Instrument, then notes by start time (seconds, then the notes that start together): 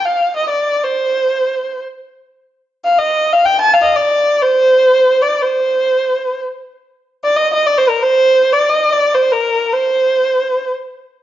kamancheh
0.05 F5
0.36 D#5
0.49 D5
0.84 C5
2.85 F5
2.98 D#5
3.33 F5
3.45 G5
3.61 A5
3.73 F5
3.82 D#5 F5
3.96 D5
4.42 C5
5.22 D5
5.42 C5
7.24 D5
7.36 D#5
7.54 D#5
7.67 D5
7.78 C5
7.89 A#4
8.03 C5
8.53 D5
8.70 D#5
8.93 D5
9.14 C5
9.32 A#4
9.73 C5